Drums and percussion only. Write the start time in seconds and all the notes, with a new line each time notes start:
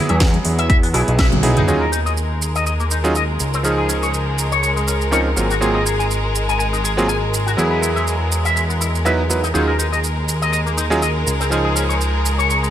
0.09 closed hi-hat, high conga
0.20 kick, snare, closed hi-hat
0.33 closed hi-hat, high conga
0.45 open hi-hat
0.59 closed hi-hat
0.70 kick, closed hi-hat
0.83 open hi-hat
0.94 open hi-hat
1.08 closed hi-hat
1.19 kick, snare, closed hi-hat
1.32 closed hi-hat, high tom, high conga, low conga
1.43 open hi-hat, mid tom
1.57 closed hi-hat, mid tom, low conga
1.68 shaker
1.93 shaker
2.06 shaker
2.17 shaker
2.42 shaker
2.56 shaker
2.67 shaker
2.80 shaker
2.91 shaker
3.04 shaker
3.15 shaker
3.40 shaker
3.54 shaker
3.64 shaker
3.89 shaker
4.03 shaker
4.14 shaker
4.38 shaker
4.52 shaker
4.63 shaker
4.77 shaker
4.88 shaker
5.01 shaker
5.13 shaker
5.37 shaker
5.51 shaker
5.62 shaker
5.86 shaker
6.00 shaker
6.11 shaker
6.35 shaker
6.49 shaker
6.60 shaker
6.74 shaker
6.85 shaker
6.98 shaker
7.09 shaker
7.34 shaker
7.48 shaker
7.59 shaker
7.83 shaker
7.97 shaker
8.07 shaker
8.32 shaker
8.45 shaker
8.57 shaker
8.70 shaker
8.81 shaker
8.95 shaker
9.06 shaker
9.30 shaker
9.44 shaker
9.55 shaker
9.79 shaker
9.93 shaker
10.04 shaker
10.29 shaker
10.42 shaker
10.53 shaker
10.67 shaker
10.78 shaker
10.92 shaker
11.02 shaker
11.27 shaker
11.41 shaker
11.52 shaker
11.76 shaker
11.90 shaker
12.01 shaker
12.26 shaker
12.39 shaker
12.50 shaker
12.64 shaker